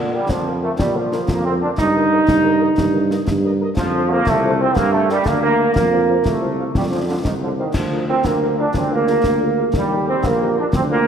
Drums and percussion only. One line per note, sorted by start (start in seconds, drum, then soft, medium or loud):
0.29 concert bass drum medium
0.29 snare medium
0.79 concert bass drum medium
0.79 snare medium
1.12 snare medium
1.28 concert bass drum medium
1.28 snare medium
1.78 concert bass drum medium
1.78 snare medium
2.28 concert bass drum medium
2.28 snare medium
2.78 concert bass drum medium
2.78 snare medium
3.11 snare medium
3.28 concert bass drum medium
3.28 snare medium
3.77 concert bass drum medium
3.77 snare medium
3.77 crash soft
4.27 concert bass drum medium
4.27 snare medium
4.76 concert bass drum medium
4.76 snare medium
5.10 snare medium
5.26 concert bass drum medium
5.26 snare medium
5.76 concert bass drum medium
5.76 snare medium
6.25 concert bass drum medium
6.25 snare medium
6.75 concert bass drum medium
6.75 snare medium
7.25 concert bass drum medium
7.25 snare medium
7.74 concert bass drum medium
7.74 snare medium
7.74 crash soft
8.24 concert bass drum medium
8.24 snare medium
8.74 concert bass drum medium
8.74 snare medium
9.07 snare soft
9.24 concert bass drum medium
9.24 snare medium
9.74 concert bass drum medium
9.74 snare medium
10.24 concert bass drum medium
10.24 snare medium
10.73 concert bass drum medium
10.73 snare medium